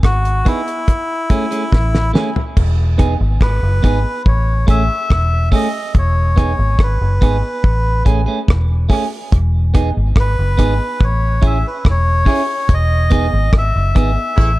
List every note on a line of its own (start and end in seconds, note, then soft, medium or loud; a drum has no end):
0.03 0.42 G#1 medium
0.03 0.47 F#4 loud
0.03 kick loud
0.03 cross-stick loud
0.03 closed hi-hat medium
0.25 closed hi-hat soft
0.45 0.60 B3 medium
0.45 0.61 D#4 medium
0.45 2.11 E4 loud
0.45 0.61 G#4 medium
0.45 kick medium
0.45 closed hi-hat medium
0.68 closed hi-hat soft
0.88 kick loud
0.88 closed hi-hat medium
1.30 1.45 A3 medium
1.30 1.45 C#4 medium
1.30 1.46 G#4 medium
1.30 kick medium
1.30 closed hi-hat medium
1.51 1.63 A3 soft
1.51 1.63 C#4 medium
1.51 1.63 G#4 medium
1.51 closed hi-hat medium
1.72 2.11 A1 loud
1.72 kick loud
1.72 snare soft
1.95 snare medium
2.13 2.29 A3 medium
2.13 2.29 C#4 medium
2.13 2.30 G#4 medium
2.13 snare medium
2.36 floor tom medium
2.57 3.17 E1 loud
2.57 kick loud
2.57 crash medium
2.98 3.14 B3 medium
2.98 3.14 D#4 medium
2.98 3.14 G#4 loud
2.98 kick medium
2.98 cross-stick soft
2.98 closed hi-hat medium
3.21 3.39 G#1 loud
3.41 3.61 G#1 loud
3.41 4.22 B4 loud
3.41 kick medium
3.41 cross-stick loud
3.63 3.82 F#1 loud
3.82 4.03 G#1 medium
3.82 3.98 B3 medium
3.82 3.98 D#4 medium
3.82 3.99 G#4 medium
3.82 kick medium
3.82 closed hi-hat medium
4.26 4.64 A1 loud
4.26 4.66 C#5 medium
4.26 kick loud
4.67 4.88 A1 medium
4.67 4.82 A3 medium
4.67 4.83 C#4 medium
4.67 4.83 G#4 medium
4.67 5.49 E5 loud
4.67 kick medium
4.67 closed hi-hat medium
5.10 5.49 E1 medium
5.10 kick loud
5.10 cross-stick loud
5.52 5.67 A3 medium
5.52 5.67 C#4 medium
5.52 5.68 G#4 medium
5.52 5.93 D#5 medium
5.52 kick medium
5.52 open hi-hat medium
5.95 6.54 E1 loud
5.95 6.83 C#5 loud
5.95 kick loud
5.95 hi-hat pedal medium
6.36 6.51 B3 medium
6.36 6.52 D#4 medium
6.36 6.52 G#4 medium
6.36 kick loud
6.36 cross-stick medium
6.36 closed hi-hat medium
6.59 6.77 G#1 medium
6.79 6.98 G#1 medium
6.79 kick loud
6.79 cross-stick loud
6.83 8.03 B4 medium
7.01 7.20 F#1 medium
7.21 7.41 G#1 medium
7.21 7.36 B3 medium
7.21 7.36 D#4 medium
7.21 7.37 G#4 medium
7.21 kick medium
7.21 closed hi-hat medium
7.64 8.02 A1 loud
7.64 kick loud
8.05 8.25 A1 medium
8.05 8.20 A3 medium
8.05 8.20 C#4 medium
8.05 8.21 G#4 medium
8.05 kick medium
8.05 closed hi-hat medium
8.26 8.39 A3 medium
8.26 8.38 C#4 medium
8.26 8.38 G#4 medium
8.48 8.86 E1 medium
8.48 kick loud
8.48 cross-stick loud
8.89 9.04 A3 medium
8.89 9.05 C#4 medium
8.89 9.05 G#4 loud
8.89 kick medium
8.89 open hi-hat medium
9.32 9.92 E1 loud
9.32 kick loud
9.32 hi-hat pedal medium
9.74 9.89 B3 medium
9.74 9.89 D#4 loud
9.74 9.89 G#4 loud
9.74 kick loud
9.74 cross-stick medium
9.74 closed hi-hat medium
9.97 10.15 G#1 medium
10.16 10.35 G#1 medium
10.16 kick loud
10.16 cross-stick loud
10.20 11.05 B4 loud
10.39 10.57 F#1 medium
10.57 10.78 G#1 loud
10.57 10.73 B3 medium
10.57 10.73 D#4 medium
10.57 10.74 G#4 medium
10.57 kick medium
10.57 closed hi-hat medium
11.01 11.39 A1 loud
11.01 11.46 C#5 loud
11.01 kick loud
11.42 11.62 A1 medium
11.42 11.57 C#4 medium
11.42 11.57 E4 medium
11.42 11.58 G#4 medium
11.42 kick loud
11.42 closed hi-hat medium
11.47 11.66 E5 medium
11.67 11.85 B4 medium
11.85 12.23 E1 loud
11.85 kick loud
11.85 cross-stick loud
11.90 12.74 C#5 loud
12.25 12.41 C#4 medium
12.25 12.42 E4 medium
12.25 12.42 G#4 medium
12.25 kick medium
12.25 open hi-hat medium
12.69 13.29 E1 loud
12.69 kick loud
12.69 hi-hat pedal medium
12.74 13.52 D#5 loud
13.10 13.26 B3 medium
13.10 13.26 D#4 loud
13.10 13.27 G#4 loud
13.10 kick medium
13.10 closed hi-hat medium
13.33 13.52 G#1 medium
13.53 13.73 G#1 medium
13.53 kick loud
13.53 cross-stick loud
13.58 14.59 E5 loud
13.76 13.94 F#1 medium
13.95 14.15 G#1 medium
13.95 14.10 B3 medium
13.95 14.11 D#4 medium
13.95 14.11 G#4 medium
13.95 kick loud
13.95 closed hi-hat medium
14.36 14.59 A1 loud
14.36 14.50 C#3 medium
14.36 14.50 E3 medium
14.36 14.50 A3 medium
14.36 14.50 E4 loud
14.36 kick loud